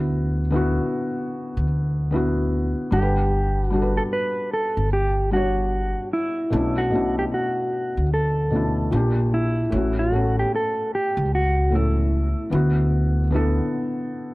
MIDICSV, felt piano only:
0, 0, Header, 1, 2, 480
1, 0, Start_track
1, 0, Tempo, 800000
1, 73, Time_signature, 4, 2, 24, 8
1, 8605, End_track
2, 0, Start_track
2, 0, Title_t, "Felt piano"
2, 0, Program_c, 0, 0
2, 0, Control_c, 0, 64, 127
2, 0, Note_on_c, 0, 50, 72
2, 0, Note_on_c, 0, 59, 67
2, 0, Note_on_c, 0, 64, 69
2, 0, Note_on_c, 0, 66, 79
2, 234, Note_off_c, 0, 50, 0
2, 239, Note_off_c, 0, 59, 0
2, 243, Note_off_c, 0, 64, 0
2, 249, Note_off_c, 0, 66, 0
2, 303, Note_on_c, 0, 50, 86
2, 313, Note_on_c, 0, 59, 82
2, 323, Note_on_c, 0, 64, 78
2, 334, Note_on_c, 0, 66, 96
2, 966, Note_off_c, 0, 50, 0
2, 971, Note_off_c, 0, 59, 0
2, 976, Note_off_c, 0, 64, 0
2, 981, Note_off_c, 0, 66, 0
2, 1264, Note_on_c, 0, 50, 76
2, 1274, Note_on_c, 0, 59, 73
2, 1283, Note_on_c, 0, 64, 74
2, 1294, Note_on_c, 0, 66, 81
2, 1744, Note_on_c, 0, 55, 75
2, 1748, Note_off_c, 0, 50, 0
2, 1753, Note_off_c, 0, 59, 0
2, 1754, Note_on_c, 0, 62, 69
2, 1758, Note_off_c, 0, 64, 0
2, 1760, Control_c, 0, 64, 0
2, 1763, Note_off_c, 0, 66, 0
2, 1765, Note_on_c, 0, 78, 64
2, 1774, Note_on_c, 0, 69, 64
2, 1811, Note_off_c, 0, 69, 0
2, 1813, Note_on_c, 0, 71, 80
2, 1882, Control_c, 0, 64, 127
2, 2154, Note_off_c, 0, 55, 0
2, 2159, Note_off_c, 0, 62, 0
2, 2164, Note_off_c, 0, 78, 0
2, 2188, Note_off_c, 0, 71, 0
2, 2222, Note_on_c, 0, 55, 72
2, 2233, Note_on_c, 0, 62, 64
2, 2243, Note_on_c, 0, 66, 66
2, 2253, Note_on_c, 0, 69, 65
2, 2290, Note_off_c, 0, 69, 0
2, 2291, Note_on_c, 0, 71, 77
2, 2885, Note_off_c, 0, 55, 0
2, 2891, Note_off_c, 0, 62, 0
2, 2896, Note_off_c, 0, 66, 0
2, 2920, Note_off_c, 0, 71, 0
2, 3186, Note_on_c, 0, 55, 62
2, 3196, Note_on_c, 0, 62, 56
2, 3205, Note_on_c, 0, 66, 59
2, 3216, Note_on_c, 0, 73, 77
2, 3669, Note_off_c, 0, 55, 0
2, 3674, Note_off_c, 0, 62, 0
2, 3679, Note_off_c, 0, 66, 0
2, 3684, Note_off_c, 0, 73, 0
2, 3902, Note_on_c, 0, 47, 72
2, 3909, Note_on_c, 0, 57, 67
2, 3918, Note_on_c, 0, 61, 65
2, 3920, Control_c, 0, 64, 0
2, 3924, Note_on_c, 0, 62, 66
2, 3932, Note_on_c, 0, 64, 73
2, 4041, Control_c, 0, 64, 127
2, 4067, Note_off_c, 0, 47, 0
2, 4071, Note_off_c, 0, 57, 0
2, 4075, Note_off_c, 0, 61, 0
2, 4078, Note_off_c, 0, 62, 0
2, 4082, Note_off_c, 0, 64, 0
2, 4143, Note_on_c, 0, 47, 74
2, 4150, Note_on_c, 0, 57, 62
2, 4158, Note_on_c, 0, 61, 62
2, 4165, Note_on_c, 0, 62, 67
2, 4172, Note_on_c, 0, 64, 82
2, 4806, Note_off_c, 0, 47, 0
2, 4809, Note_off_c, 0, 57, 0
2, 4813, Note_off_c, 0, 61, 0
2, 4817, Note_off_c, 0, 62, 0
2, 4820, Note_off_c, 0, 64, 0
2, 5103, Note_on_c, 0, 47, 65
2, 5111, Note_on_c, 0, 57, 59
2, 5117, Note_on_c, 0, 61, 57
2, 5126, Note_on_c, 0, 62, 59
2, 5133, Note_on_c, 0, 64, 72
2, 5345, Note_on_c, 0, 46, 77
2, 5347, Note_off_c, 0, 47, 0
2, 5352, Note_off_c, 0, 57, 0
2, 5355, Note_off_c, 0, 61, 0
2, 5356, Note_off_c, 0, 62, 0
2, 5356, Note_on_c, 0, 58, 71
2, 5361, Control_c, 0, 64, 0
2, 5363, Note_off_c, 0, 64, 0
2, 5365, Note_on_c, 0, 62, 70
2, 5375, Note_on_c, 0, 67, 86
2, 5452, Control_c, 0, 64, 127
2, 5755, Note_off_c, 0, 46, 0
2, 5760, Note_off_c, 0, 58, 0
2, 5765, Note_off_c, 0, 62, 0
2, 5769, Note_off_c, 0, 67, 0
2, 5822, Note_on_c, 0, 45, 71
2, 5831, Note_on_c, 0, 57, 62
2, 5840, Control_c, 0, 64, 0
2, 5842, Note_on_c, 0, 61, 67
2, 5852, Note_on_c, 0, 66, 74
2, 5943, Control_c, 0, 64, 127
2, 5987, Note_off_c, 0, 45, 0
2, 5992, Note_off_c, 0, 57, 0
2, 5997, Note_off_c, 0, 61, 0
2, 6002, Note_off_c, 0, 66, 0
2, 6063, Note_on_c, 0, 45, 67
2, 6072, Note_on_c, 0, 57, 69
2, 6081, Note_on_c, 0, 61, 66
2, 6093, Note_on_c, 0, 69, 74
2, 6726, Note_off_c, 0, 45, 0
2, 6730, Note_off_c, 0, 57, 0
2, 6735, Note_off_c, 0, 61, 0
2, 6741, Note_off_c, 0, 69, 0
2, 7022, Note_on_c, 0, 45, 66
2, 7031, Note_on_c, 0, 57, 61
2, 7042, Note_on_c, 0, 61, 57
2, 7051, Note_on_c, 0, 69, 73
2, 7500, Note_on_c, 0, 50, 70
2, 7507, Note_off_c, 0, 45, 0
2, 7507, Note_on_c, 0, 59, 72
2, 7512, Note_off_c, 0, 57, 0
2, 7517, Note_off_c, 0, 61, 0
2, 7519, Note_on_c, 0, 64, 72
2, 7521, Control_c, 0, 64, 0
2, 7522, Note_off_c, 0, 69, 0
2, 7528, Note_on_c, 0, 66, 82
2, 7608, Control_c, 0, 64, 127
2, 7912, Note_off_c, 0, 50, 0
2, 7916, Note_off_c, 0, 59, 0
2, 7921, Note_off_c, 0, 64, 0
2, 7926, Note_off_c, 0, 66, 0
2, 7983, Note_on_c, 0, 50, 85
2, 7993, Note_on_c, 0, 59, 83
2, 8004, Note_on_c, 0, 64, 79
2, 8013, Note_on_c, 0, 69, 96
2, 8605, Note_off_c, 0, 50, 0
2, 8605, Note_off_c, 0, 59, 0
2, 8605, Note_off_c, 0, 64, 0
2, 8605, Note_off_c, 0, 69, 0
2, 8605, End_track
0, 0, End_of_file